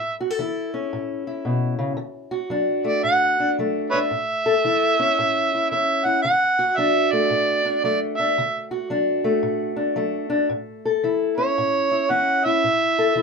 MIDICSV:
0, 0, Header, 1, 3, 480
1, 0, Start_track
1, 0, Key_signature, 3, "major"
1, 0, Tempo, 532860
1, 1784, Time_signature, 4, 2, 24, 8
1, 11910, End_track
2, 0, Start_track
2, 0, Title_t, "Harmonica"
2, 0, Program_c, 0, 22
2, 0, Note_on_c, 0, 76, 83
2, 137, Note_off_c, 0, 76, 0
2, 2578, Note_on_c, 0, 74, 84
2, 2729, Note_off_c, 0, 74, 0
2, 2740, Note_on_c, 0, 78, 113
2, 3187, Note_off_c, 0, 78, 0
2, 3518, Note_on_c, 0, 71, 74
2, 3518, Note_on_c, 0, 73, 74
2, 3518, Note_on_c, 0, 76, 106
2, 3585, Note_off_c, 0, 73, 0
2, 3590, Note_off_c, 0, 71, 0
2, 5101, Note_off_c, 0, 76, 0
2, 5135, Note_on_c, 0, 76, 97
2, 5453, Note_on_c, 0, 78, 100
2, 5466, Note_off_c, 0, 76, 0
2, 5600, Note_off_c, 0, 78, 0
2, 5605, Note_on_c, 0, 78, 103
2, 6101, Note_on_c, 0, 76, 92
2, 6115, Note_off_c, 0, 78, 0
2, 6407, Note_on_c, 0, 74, 93
2, 6421, Note_off_c, 0, 76, 0
2, 7061, Note_off_c, 0, 74, 0
2, 7066, Note_on_c, 0, 74, 79
2, 7203, Note_off_c, 0, 74, 0
2, 7356, Note_on_c, 0, 76, 86
2, 7808, Note_off_c, 0, 76, 0
2, 10249, Note_on_c, 0, 73, 93
2, 10904, Note_on_c, 0, 78, 108
2, 10917, Note_off_c, 0, 73, 0
2, 11211, Note_on_c, 0, 76, 102
2, 11224, Note_off_c, 0, 78, 0
2, 11910, Note_off_c, 0, 76, 0
2, 11910, End_track
3, 0, Start_track
3, 0, Title_t, "Steel-string acoustic guitar"
3, 0, Program_c, 1, 25
3, 0, Note_on_c, 1, 45, 76
3, 0, Note_on_c, 1, 69, 68
3, 181, Note_off_c, 1, 69, 0
3, 185, Note_on_c, 1, 66, 66
3, 275, Note_off_c, 1, 66, 0
3, 275, Note_on_c, 1, 69, 57
3, 321, Note_off_c, 1, 45, 0
3, 350, Note_on_c, 1, 52, 63
3, 363, Note_on_c, 1, 64, 62
3, 665, Note_on_c, 1, 61, 55
3, 792, Note_off_c, 1, 52, 0
3, 837, Note_on_c, 1, 45, 69
3, 1135, Note_off_c, 1, 64, 0
3, 1145, Note_on_c, 1, 64, 57
3, 1276, Note_off_c, 1, 45, 0
3, 1306, Note_on_c, 1, 47, 63
3, 1605, Note_off_c, 1, 47, 0
3, 1609, Note_on_c, 1, 49, 68
3, 1769, Note_off_c, 1, 49, 0
3, 1770, Note_off_c, 1, 61, 0
3, 1770, Note_off_c, 1, 64, 0
3, 1773, Note_on_c, 1, 50, 77
3, 1792, Note_off_c, 1, 69, 0
3, 2082, Note_on_c, 1, 66, 68
3, 2223, Note_off_c, 1, 50, 0
3, 2251, Note_on_c, 1, 54, 63
3, 2261, Note_on_c, 1, 62, 61
3, 2562, Note_on_c, 1, 57, 58
3, 2702, Note_off_c, 1, 54, 0
3, 2738, Note_on_c, 1, 45, 69
3, 3048, Note_off_c, 1, 62, 0
3, 3062, Note_on_c, 1, 62, 55
3, 3185, Note_off_c, 1, 45, 0
3, 3230, Note_on_c, 1, 54, 60
3, 3233, Note_off_c, 1, 57, 0
3, 3237, Note_on_c, 1, 57, 56
3, 3535, Note_off_c, 1, 62, 0
3, 3545, Note_on_c, 1, 62, 63
3, 3671, Note_off_c, 1, 54, 0
3, 3690, Note_off_c, 1, 62, 0
3, 3699, Note_off_c, 1, 66, 0
3, 3702, Note_on_c, 1, 45, 73
3, 4016, Note_on_c, 1, 69, 70
3, 4148, Note_off_c, 1, 45, 0
3, 4184, Note_on_c, 1, 52, 63
3, 4190, Note_on_c, 1, 64, 56
3, 4495, Note_off_c, 1, 57, 0
3, 4499, Note_on_c, 1, 61, 60
3, 4628, Note_off_c, 1, 52, 0
3, 4671, Note_on_c, 1, 45, 64
3, 4972, Note_off_c, 1, 64, 0
3, 4995, Note_on_c, 1, 64, 55
3, 5112, Note_off_c, 1, 45, 0
3, 5147, Note_off_c, 1, 61, 0
3, 5150, Note_on_c, 1, 52, 59
3, 5160, Note_on_c, 1, 61, 58
3, 5441, Note_off_c, 1, 64, 0
3, 5452, Note_on_c, 1, 64, 61
3, 5591, Note_off_c, 1, 52, 0
3, 5603, Note_off_c, 1, 64, 0
3, 5610, Note_off_c, 1, 61, 0
3, 5626, Note_on_c, 1, 50, 74
3, 5931, Note_off_c, 1, 69, 0
3, 5934, Note_on_c, 1, 66, 68
3, 6069, Note_off_c, 1, 50, 0
3, 6104, Note_on_c, 1, 54, 66
3, 6110, Note_on_c, 1, 62, 62
3, 6422, Note_on_c, 1, 57, 60
3, 6548, Note_off_c, 1, 54, 0
3, 6577, Note_on_c, 1, 45, 69
3, 6884, Note_off_c, 1, 62, 0
3, 6894, Note_on_c, 1, 62, 54
3, 7025, Note_off_c, 1, 45, 0
3, 7061, Note_on_c, 1, 54, 61
3, 7064, Note_off_c, 1, 57, 0
3, 7067, Note_on_c, 1, 57, 56
3, 7371, Note_off_c, 1, 62, 0
3, 7383, Note_on_c, 1, 62, 61
3, 7506, Note_off_c, 1, 54, 0
3, 7528, Note_off_c, 1, 62, 0
3, 7550, Note_on_c, 1, 50, 75
3, 7835, Note_off_c, 1, 66, 0
3, 7846, Note_on_c, 1, 66, 68
3, 7991, Note_off_c, 1, 50, 0
3, 8017, Note_on_c, 1, 54, 63
3, 8024, Note_on_c, 1, 62, 59
3, 8323, Note_off_c, 1, 57, 0
3, 8327, Note_on_c, 1, 57, 63
3, 8464, Note_off_c, 1, 54, 0
3, 8493, Note_on_c, 1, 45, 69
3, 8785, Note_off_c, 1, 62, 0
3, 8796, Note_on_c, 1, 62, 58
3, 8942, Note_off_c, 1, 45, 0
3, 8970, Note_on_c, 1, 54, 64
3, 8972, Note_off_c, 1, 57, 0
3, 8976, Note_on_c, 1, 57, 63
3, 9264, Note_off_c, 1, 62, 0
3, 9275, Note_on_c, 1, 62, 64
3, 9421, Note_off_c, 1, 54, 0
3, 9434, Note_off_c, 1, 62, 0
3, 9454, Note_on_c, 1, 45, 80
3, 9460, Note_off_c, 1, 66, 0
3, 9778, Note_on_c, 1, 69, 69
3, 9903, Note_off_c, 1, 45, 0
3, 9941, Note_on_c, 1, 52, 66
3, 9946, Note_on_c, 1, 64, 60
3, 10244, Note_off_c, 1, 57, 0
3, 10248, Note_on_c, 1, 61, 60
3, 10386, Note_off_c, 1, 52, 0
3, 10432, Note_on_c, 1, 45, 68
3, 10730, Note_off_c, 1, 64, 0
3, 10733, Note_on_c, 1, 64, 61
3, 10871, Note_off_c, 1, 45, 0
3, 10893, Note_off_c, 1, 61, 0
3, 10900, Note_on_c, 1, 52, 63
3, 10904, Note_on_c, 1, 61, 59
3, 11218, Note_off_c, 1, 64, 0
3, 11221, Note_on_c, 1, 64, 63
3, 11345, Note_off_c, 1, 52, 0
3, 11361, Note_off_c, 1, 61, 0
3, 11365, Note_off_c, 1, 69, 0
3, 11385, Note_on_c, 1, 45, 74
3, 11698, Note_on_c, 1, 69, 67
3, 11828, Note_off_c, 1, 45, 0
3, 11849, Note_on_c, 1, 52, 63
3, 11859, Note_off_c, 1, 64, 0
3, 11863, Note_on_c, 1, 64, 59
3, 11910, Note_off_c, 1, 52, 0
3, 11910, Note_off_c, 1, 64, 0
3, 11910, Note_off_c, 1, 69, 0
3, 11910, End_track
0, 0, End_of_file